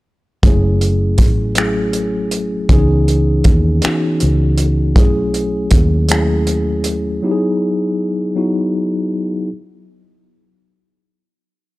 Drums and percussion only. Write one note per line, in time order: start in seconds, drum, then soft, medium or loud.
0.43 kick loud
0.43 closed hi-hat medium
0.81 closed hi-hat soft
1.18 kick medium
1.18 closed hi-hat medium
1.55 finger snap loud
1.55 closed hi-hat medium
1.93 closed hi-hat soft
2.31 closed hi-hat medium
2.69 kick loud
2.69 closed hi-hat medium
3.08 closed hi-hat soft
3.44 kick medium
3.44 closed hi-hat medium
3.82 finger snap loud
3.82 closed hi-hat medium
4.20 closed hi-hat soft
4.58 closed hi-hat medium
4.96 kick loud
4.96 closed hi-hat medium
5.34 closed hi-hat soft
5.71 kick medium
5.71 closed hi-hat medium
6.09 finger snap loud
6.09 closed hi-hat medium
6.47 closed hi-hat medium
6.84 closed hi-hat medium